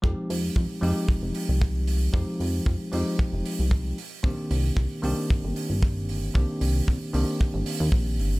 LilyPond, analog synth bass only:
\new Staff \with { instrumentName = "Analog synth bass" } { \clef bass \time 4/4 \key f \dorian \tempo 4 = 114 f,16 r16 f,8 f,16 r16 f,16 r16 f,,16 f,,16 r16 c,4~ c,16 | f,16 r16 f,8 f,16 r16 f,16 r8 f,,16 r16 c,8. r8 | c,16 r16 c,8 c,16 r16 c,16 r16 g,,16 g,,16 r16 g,,4~ g,,16 | c,16 r16 c,8 c,16 r16 c,16 r8 g,,16 r16 ees,16 bes,,8 g,,8 | }